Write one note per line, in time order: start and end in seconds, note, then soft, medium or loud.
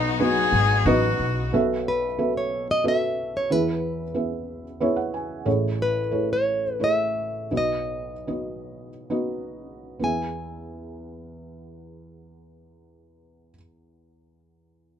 0.00 1.48 B1 medium
0.00 1.47 B2 medium
0.00 1.51 F#3 medium
0.00 0.20 B3 medium
0.00 1.50 B3 medium
0.00 0.20 D#4 medium
0.00 0.21 D#4 medium
0.00 1.50 D#4 medium
0.00 0.21 F#4 medium
0.00 1.50 F#4 medium
0.00 0.21 D#5 medium
0.00 0.55 D#5 medium
0.20 0.68 B3 medium
0.20 0.68 D#4 medium
0.20 0.69 F#4 medium
0.20 0.88 G#4 medium
0.20 0.69 D#5 medium
0.52 0.82 G#1 medium
0.86 1.15 A1 medium
0.86 1.51 B3 medium
0.86 1.52 D#4 medium
0.86 1.52 F#4 medium
0.86 1.51 F#4 medium
0.86 1.53 D#5 medium
1.20 1.49 B1 medium
1.53 3.46 B1 medium
1.53 3.46 B2 medium
1.53 2.05 B3 medium
1.53 2.05 F#4 medium
1.53 2.06 A4 medium
1.53 2.06 E5 medium
1.88 2.33 B4 medium
2.18 2.67 B3 soft
2.18 2.67 F#4 soft
2.18 2.67 A4 soft
2.18 2.67 E5 medium
2.37 2.67 C#5 medium
2.71 2.85 D#5 medium
2.84 3.49 B3 medium
2.84 3.50 F#4 medium
2.84 3.50 A4 medium
2.84 3.50 E5 medium
2.88 3.37 E5 medium
3.37 3.52 C#5 medium
3.50 5.43 E2 soft
3.50 5.43 E3 soft
3.50 4.02 B3 medium
3.50 4.03 E4 medium
3.50 4.03 G#4 medium
3.50 4.17 B4 medium
3.50 4.03 E5 medium
4.14 4.63 B3 medium
4.14 4.63 E4 soft
4.14 4.64 G#4 soft
4.14 4.64 E5 medium
4.80 5.46 B3 medium
4.80 5.44 E4 medium
4.80 5.44 G#4 medium
4.80 5.45 C#5 medium
4.80 4.96 E5 medium
4.96 5.12 F#5 medium
5.14 5.44 G#5 medium
5.45 7.47 A1 medium
5.45 7.47 A2 medium
5.45 5.98 A3 medium
5.45 5.98 E4 medium
5.45 5.99 G#4 medium
5.45 5.99 C#5 medium
5.82 6.32 B4 medium
6.11 6.62 A3 medium
6.11 6.62 E4 soft
6.11 6.62 G#4 soft
6.11 6.62 C#5 soft
6.33 6.83 C#5 medium
6.80 7.51 A3 soft
6.80 7.51 E4 soft
6.80 7.52 G#4 soft
6.80 7.52 C#5 medium
6.84 7.55 E5 medium
7.51 9.99 B1 soft
7.51 9.98 B2 soft
7.51 8.12 B3 soft
7.51 8.12 D#4 soft
7.51 8.12 F#4 soft
7.51 8.12 D#5 medium
7.57 9.10 D#5 medium
8.27 8.88 B3 soft
8.27 8.88 D#4 soft
8.27 8.89 F#4 soft
8.27 8.89 D#5 soft
9.10 9.98 B3 medium
9.10 10.02 D#4 soft
9.10 10.02 F#4 soft
9.10 10.03 D#5 medium
9.99 13.53 E2 soft
9.99 13.50 B3 soft
9.99 13.52 E4 soft
9.99 13.53 G#4 soft
10.04 13.55 E5 soft
10.04 13.55 G#5 soft